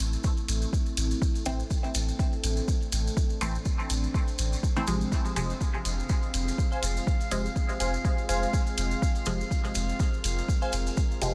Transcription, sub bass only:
0.00 A1
0.48 A1
0.97 A1
1.46 A1
1.95 A1
2.44 A1
2.92 A1
3.41 A1
3.90 A1
4.39 A1
4.88 A1
5.36 F1
5.85 F1
6.34 F1
6.83 F1
7.31 F1
7.80 F1
8.29 F1
8.78 F1
9.26 F1
9.75 F1
10.24 F1
10.73 F1
11.22 F1

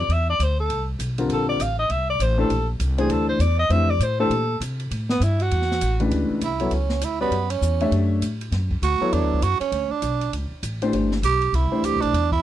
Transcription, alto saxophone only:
0.00 D5
0.12 E5
0.30 D5
0.43 C5
0.60 A4
1.33 A4
1.49 D5
1.62 F5
1.79 D#5
1.91 E5
2.10 D5
2.22 C5
2.39 A4
3.00 G#4
3.12 A4
3.29 C5
3.41 D5
3.59 D#5
3.71 E5
3.90 D5
4.03 C5
4.20 A4
5.10 B3
5.23 E4
5.42 F#4

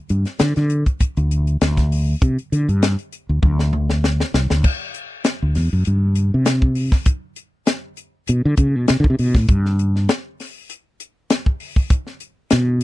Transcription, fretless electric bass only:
0.10 G2
0.41 D3
0.57 D3
1.01 muted fretless electric bass stroke
1.17 D2
1.62 D2
2.22 C3
2.52 D3
2.69 G2
3.29 D2
3.43 D2
4.34 C2
4.51 D2
5.42 D2
5.56 E2
5.73 F#2
5.87 G2
6.34 C3
8.29 B2
8.45 D3
8.58 C#3
8.76 B2
8.90 C3
9.00 D3
9.10 C3
9.19 B2
9.36 A2
9.50 G2
12.53 B2

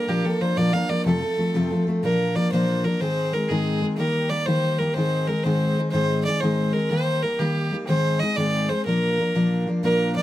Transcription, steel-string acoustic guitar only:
0.08 A#2 F3 A#3 D4 A#4
0.25 F3 A#3 D4 A#4
0.40 F3 A#3 D4 A#4
0.57 A#2 F3 A#3 D4 A#4
0.73 F3 A#3 D4 A#4
0.89 F3 A#3 D4 A#4
1.05 F2 C3 F3 A3 C4 A4
1.21 F3 A3 C4 A4
1.38 F3 A3 C4 A4
1.54 F2 C3 F3 A3 C4 A4
1.70 F3 A3 C4 A4
1.87 F3 A3 C4 A4
2.03 A#2 F3 A#3 D4 A#4
2.36 F3 A#3 D4 A#4
2.52 A#2 F3 A#3 D4 A#4
2.84 F3 A#3 D4 A#4
3.01 G#2 D#3 G#3 C4 D#4 G#4
3.33 G#3 C4 D#4 G#4
3.50 G#2 D#3 G#3 C4 D#4 G#4
3.82 G#3 C4 D#4 G#4
3.98 D#3 G3 A#3 D#4 G4
4.30 G3 A#3 D#4 G4
4.47 D#3 G3 A#3 D#4 G4
4.79 G3 A#3 D#4 G4
4.96 G#2 D#3 G#3 C4 D#4 G#4
5.28 G#3 C4 D#4 G#4
5.45 G#2 D#3 G#3 C4 D#4 G#4
5.77 G#3 C4 D#4 G#4
5.93 G#2 D#3 G#3 C4 D#4 G#4
6.26 G#3 C4 D#4 G#4
6.42 G#2 D#3 G#3 C4 D#4 G#4
6.74 G#3 C4 D#4 G#4
6.91 D#3 G3 A#3 D#4 G4
7.23 G3 A#3 D#4 G4
7.39 D#3 G3 A#3 D#4 G4
7.72 G3 A#3 D#4 G4
7.88 G#2 D#3 G#3 C4 D#4 G#4
8.21 G#3 C4 D#4 G#4
8.37 G#2 D#3 G#3 C4 D#4 G#4
8.69 G#3 C4 D#4 G#4
8.86 A#2 F3 A#3 D4 A#4
9.18 F3 A#3 D4 A#4
9.35 A#2 F3 A#3 D4 A#4
9.66 F3 A#3 D4 A#4
9.83 A#2 F3 A#3 D4 A#4
10.15 F3 A#3 D4 A#4

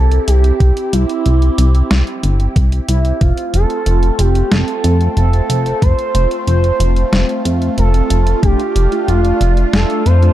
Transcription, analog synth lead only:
Already playing: A4
0.28 G4
0.93 E4
2.89 E4
3.22 F4
3.54 A4
4.19 G4
4.52 A4
5.17 A4
5.82 C5
6.48 C5
7.78 A4
8.43 G4
9.09 F4
9.74 A4
10.06 C5

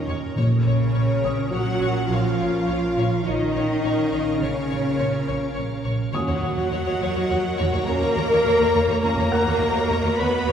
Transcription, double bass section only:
0.08 D#2
0.37 A#1
0.66 A#1
0.95 A#1
1.23 A#1
1.52 A#1
1.81 A#1
2.10 A#1
2.39 A#1
2.68 A#1
2.97 A#1
3.26 A#1
3.55 A#1
3.83 A#1
4.13 A#1
4.41 A#1
4.70 A#1
4.99 A#1
5.28 A#1
5.55 A#1
5.84 A#1
6.14 D#2
6.28 D#2
6.42 D#2
6.56 D#2
6.71 D#2
6.86 D#2
7.01 D#2
7.15 D#2
7.30 D#2
7.59 D#2
7.73 D#2
7.87 D#2
8.01 D#2
8.15 D#2
8.30 D#2
8.44 D#2
8.58 D#2
8.74 D#2
8.88 D#2
9.03 D#2
9.17 D#2
9.30 D#2
9.45 D#2
9.59 D#2
9.74 D#2
9.88 D#2
10.03 D#2
10.17 D#2
10.45 D#2

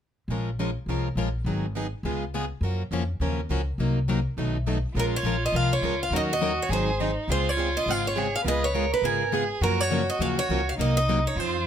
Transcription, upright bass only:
0.28 A#1
0.86 C2
1.15 A#1
1.44 G#1
2.03 C#2
2.61 F#2
2.91 F2
3.20 D#2
3.49 C#2
3.78 C2
4.37 B1
4.95 A#1
5.23 A#1
5.52 C2
5.81 C#2
6.10 D#2
6.69 G#1
7.28 C#2
7.86 G#1
8.44 C#2
9.02 G#1
9.61 F#2
10.19 D#2
10.49 C#2
10.78 C2
11.36 F2

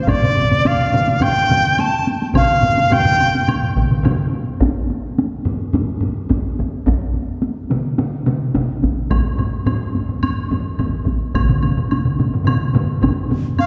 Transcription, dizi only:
0.02 F5
0.08 D5
0.67 F5
1.22 G5
1.80 A5
2.36 F5
2.93 G5
13.59 F5

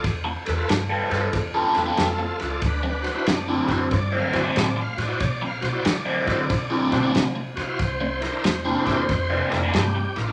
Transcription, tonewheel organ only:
0.45 A4 B4
0.56 F4 A4 B4
1.09 F4 A4 B4
1.74 F4 A4 B4
1.96 F4 G#4
2.01 A4
2.22 F4 A4
2.38 A4 B4
2.44 F4 A4
2.49 F4 A4 D5
2.65 D4 B4
2.88 D4 B4
3.02 F#4 C5
3.11 D4 E4 F#4 B4
3.15 C5
3.32 D4
3.67 E4 F#4 C5
3.92 C#5
3.96 D5
4.18 F5
4.32 E4 F#4 C5
4.39 D5
4.56 C#5
4.61 D5
4.80 F5
4.97 F#4 C5
5.02 D5
5.07 E4 F#4 C5
5.20 C#5 D5
5.46 F5
5.61 F#4 C5
5.69 E4 F#4 D5
5.74 C5
5.87 C#5
5.91 D5
6.26 E4 F#4 C5
6.91 E4 F#4 C5
7.56 F#4 C5
7.61 F5
7.67 E4 F#4 C5
7.82 C5
8.21 E4 A#4
8.25 C5
8.32 D4 E4 A#4
8.85 D4 E4 G4 B4
8.90 C5
9.50 D4 E4 A#4
9.78 G4
10.16 E4 A#4
10.20 F4
10.27 D4 E4 A#4

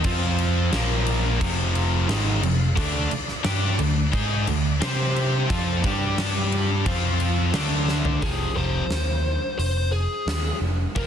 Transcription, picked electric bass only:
0.05 F2
0.73 A#1
1.41 F1
2.09 G#1
2.42 F1
2.77 D2
3.11 muted picked electric bass stroke
3.45 G2
3.79 D2
4.13 G#2
4.48 D2
4.82 C3
5.50 F2
5.84 G2
6.86 F2
7.54 D2
8.22 F1
8.56 F1
8.90 D#2
9.59 F1
10.27 D#2
10.61 F1
10.96 F1

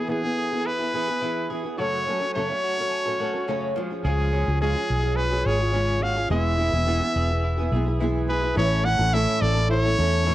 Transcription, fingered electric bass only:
4.05 C#2
4.48 C#2
4.90 B1
5.46 G#1
6.31 E1
6.73 E1
7.16 E1
7.72 B1
8.57 A1
8.99 A1
9.42 A1
9.99 E2

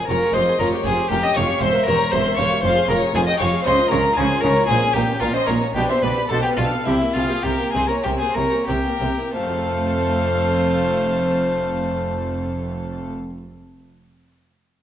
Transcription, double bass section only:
0.08 F1
0.34 F1
0.60 F1
0.85 F1
1.12 F1
1.37 F1
1.62 E1
1.88 E1
2.13 E1
2.38 E1
2.64 F1
2.89 F1
3.15 F1
3.40 F1
3.66 C#2
3.92 C#2
4.18 C#2
4.43 C#2
4.68 A#1
4.94 A#1
5.20 A#1
5.48 A#1
5.75 B1
6.01 B1
6.30 B1
6.57 B1
6.86 C2
7.14 C2
7.44 C2
7.74 C2
8.04 C2
8.35 C2
8.68 C2
9.01 C2
9.35 F1

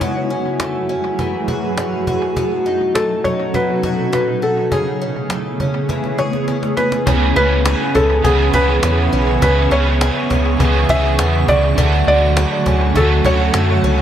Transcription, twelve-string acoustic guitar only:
Already playing: E3 C#4
0.01 F#2 F#4
0.30 C#4
0.60 A3
0.89 C#4
1.19 E3
1.48 F#4
1.78 C#4
2.07 F#4
2.37 B2 F#4
2.66 D#4
2.95 A3
3.25 D#4
3.54 F#3
3.83 F#4
4.12 D#4
4.42 F#4
4.72 C#3 G#4
5.01 C#4
5.31 A3
5.60 C#4
5.90 E3
6.19 G#4
6.48 C#4
6.77 G#4
7.07 C#3 G#4
7.36 C#4
7.65 G#4
7.95 C#4
8.25 B3
8.54 G#4
8.83 B3
9.13 C#4
9.42 C#3 G#4
9.71 C#4
10.01 G#4
10.30 C#4
10.60 B3
10.89 G#4
11.19 B3
11.78 D3 F#4
12.37 F#4
12.66 C#4
12.96 A3
13.25 F#4
13.54 A3
13.84 C#4

